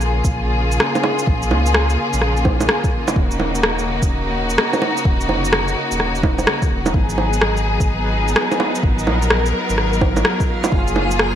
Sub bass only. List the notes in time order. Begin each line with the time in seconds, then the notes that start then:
Already playing: A#1
0.25 A#1
1.27 A#1
1.51 C#2
2.13 A#1
3.16 D#1
4.02 D#1
5.05 D#1
5.29 F1
5.91 D#1
6.71 D#1
6.94 G#1
7.80 G#1
8.83 G#1
9.07 A#1
9.70 G#1
10.72 F#1